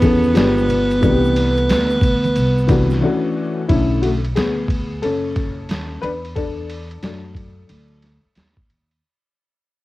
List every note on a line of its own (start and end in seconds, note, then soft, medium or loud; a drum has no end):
0.00 0.33 E2 medium
0.00 0.35 E3 medium
0.00 3.03 B3 loud
0.00 0.34 B3 medium
0.00 0.36 C#4 medium
0.00 0.35 G#4 medium
0.00 kick medium
0.00 snare soft
0.00 ride medium
0.00 shaker soft
0.04 0.37 A4 medium
0.23 high conga medium
0.23 shaker soft
0.34 0.99 G1 medium
0.34 0.92 F3 medium
0.34 0.93 G#3 medium
0.34 0.93 B3 medium
0.34 0.93 D4 medium
0.34 0.94 G4 medium
0.34 snare loud
0.34 hi-hat pedal soft
0.34 ride medium
0.34 shaker medium
0.58 shaker soft
0.69 ride medium
0.69 low conga medium
0.69 shaker soft
0.90 ride soft
0.90 shaker soft
1.01 1.66 C2 medium
1.01 1.92 C3 medium
1.01 1.92 E3 medium
1.01 1.92 A3 medium
1.01 1.93 D4 medium
1.01 1.12 F#4 medium
1.01 kick medium
1.01 ride medium
1.01 shaker medium
1.10 1.96 G4 medium
1.24 shaker soft
1.35 ride medium
1.35 shaker soft
1.56 ride soft
1.56 shaker soft
1.69 2.33 D2 medium
1.69 snare loud
1.69 hi-hat pedal soft
1.69 ride medium
1.69 shaker medium
1.90 shaker soft
2.01 kick loud
2.01 ride medium
2.01 low conga medium
2.01 shaker soft
2.24 ride soft
2.24 high conga medium
2.24 shaker soft
2.36 2.99 C2 medium
2.36 ride medium
2.36 shaker medium
2.58 shaker soft
2.67 3.02 C3 medium
2.67 2.99 E3 medium
2.67 3.00 A3 medium
2.67 3.02 D4 medium
2.67 3.03 F#4 medium
2.67 kick medium
2.67 snare soft
2.67 ride medium
2.67 shaker soft
2.90 snare soft
2.90 high conga medium
2.90 shaker soft
3.01 3.59 E3 medium
3.01 3.59 A3 medium
3.01 3.60 C#4 medium
3.01 3.60 D4 medium
3.01 3.61 F#4 loud
3.68 4.33 B1 medium
3.68 4.17 D3 soft
3.68 4.01 A3 medium
3.68 4.18 C#4 medium
3.68 4.00 E4 medium
3.68 kick medium
3.68 ride medium
4.02 4.11 A3 medium
4.02 4.09 F#4 medium
4.02 ride medium
4.25 ride soft
4.35 5.00 D2 medium
4.35 4.99 B3 medium
4.35 5.04 G#4 medium
4.35 snare loud
4.35 hi-hat pedal soft
4.35 ride medium
4.68 kick medium
4.68 ride medium
5.02 5.66 F#1 medium
5.02 6.00 C#4 medium
5.02 6.05 A4 medium
5.02 ride medium
5.36 kick medium
5.36 snare soft
5.36 ride medium
5.69 6.01 D#2 medium
5.69 snare loud
5.69 hi-hat pedal soft
5.69 ride medium
6.01 6.99 E2 loud
6.01 6.11 D4 medium
6.01 6.09 B4 loud
6.01 ride medium
6.25 ride soft
6.35 7.02 D4 medium
6.35 8.32 A4 medium
6.35 kick medium
6.35 ride medium
6.70 ride medium
6.91 ride soft
7.03 7.66 F#2 medium
7.03 7.99 F#3 soft
7.03 7.99 A3 soft
7.03 7.99 D4 soft
7.03 snare loud
7.03 hi-hat pedal soft
7.03 ride medium
7.35 kick medium
7.35 ride medium
7.69 8.22 D2 medium
7.69 ride medium
8.02 snare soft
8.02 ride medium
8.24 muted upright bass stroke soft
8.35 8.99 D#2 medium
8.35 snare medium
8.35 hi-hat pedal soft
8.35 ride medium
8.57 kick medium
8.70 ride medium
8.91 ride soft